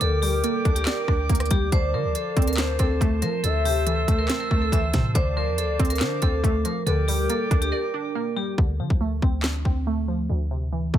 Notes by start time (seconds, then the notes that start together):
Already playing: D6
0.01 D2 D3 G4 A4 A#4 D5 G5, closed hi-hat
0.22 G3 G4, open hi-hat
0.44 A#3 A4, closed hi-hat
0.65 D2 D4, kick, closed hi-hat
0.76 G4, closed hi-hat
0.86 A#4 D5, snare, clap, closed hi-hat
1.08 D2 D4, kick, cross-stick
1.29 D2 A#3, kick, closed hi-hat
1.35 closed hi-hat
1.40 cross-stick, closed hi-hat
1.46 closed hi-hat
1.51 D2 G3 G4, kick, closed hi-hat
1.72 D2 D3 C5 D5 F5 A5, kick, closed hi-hat
1.94 D3 F3 A#4
2.05 D2
2.15 A4, closed hi-hat
2.37 D2 C4, kick, closed hi-hat
2.42 closed hi-hat
2.47 A#4, closed hi-hat
2.53 closed hi-hat
2.57 D4 C5, snare, clap, closed hi-hat
2.79 D2 C4 A4, kick, closed hi-hat
3.01 D2 A3, kick, closed hi-hat
3.22 F3 A#4, closed hi-hat
3.44 D2 A4 E5 E6, closed hi-hat
3.65 C3 G4, open hi-hat
3.87 E3 A4, closed hi-hat
4.08 D2 A3, kick, closed hi-hat
4.19 A#4
4.29 C4, snare, clap, closed hi-hat
4.40 A#4
4.51 D2 A3, kick
4.62 A4
4.72 D2 E3 E5, kick, closed hi-hat
4.93 A2 C3, kick, snare, closed hi-hat
5.15 D2 D3 C5 D5 F5 D6, kick, closed hi-hat
5.37 F3 A#4
5.47 E2
5.58 A4, closed hi-hat
5.63 D2
5.79 D2 C4, kick, closed hi-hat
5.85 closed hi-hat
5.90 A#4, closed hi-hat
5.95 closed hi-hat
6.00 D3 D4 C5, snare, clap, closed hi-hat
6.22 D2 C4 A4, kick, closed hi-hat
6.44 D2 A3, kick, closed hi-hat
6.65 F3 A#4, closed hi-hat
6.87 D2 D3 G4 A4 A#4 D5 G5 D6, closed hi-hat
7.08 G3 G4, open hi-hat
7.30 A#3 A4, closed hi-hat
7.51 D2 D4, kick, closed hi-hat
7.62 G4, closed hi-hat
7.72 A#4 D5
7.94 D4
8.15 A#3
8.36 G3 G4
8.58 D2 D3, kick
8.79 D3 F3
8.90 D2, kick
9.01 A3
9.22 D2 C4, kick
9.43 D4, snare, clap
9.65 D2 C4, kick
9.87 A3
10.08 F3
10.29 D2
10.51 C3
10.72 E3
10.94 D2 A3, kick